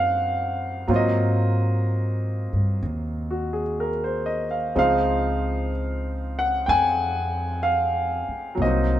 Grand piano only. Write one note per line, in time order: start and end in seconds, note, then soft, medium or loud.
0.00 0.89 F3 medium
0.00 0.86 F#3 soft
0.00 0.86 A#3 soft
0.00 0.88 C4 soft
0.00 0.89 C#4 soft
0.00 0.90 D#4 soft
0.00 0.91 F5 medium
0.00 0.91 F#5 medium
0.88 4.76 F#3 soft
0.88 4.76 A#3 soft
0.88 4.74 C4 soft
0.88 4.77 F4 soft
0.96 2.82 D#5 medium
3.31 3.61 F#4 soft
3.53 3.88 G#4 soft
3.80 4.26 A#4 soft
4.04 4.46 C5 soft
4.26 4.57 D#5 soft
4.51 4.77 F5 soft
4.75 8.61 F3 soft
4.75 8.61 G#3 soft
4.75 8.61 C4 soft
4.75 8.61 D#4 soft
4.75 5.70 F5 medium
6.39 6.66 F#5 medium
6.66 6.70 G5 medium
6.66 7.68 G#5 medium
7.63 8.63 F5 medium
8.55 9.00 F#3 soft
8.59 9.00 A#3 soft
8.59 9.00 C4 soft
8.59 9.00 D#5 medium
8.66 9.00 D#4 soft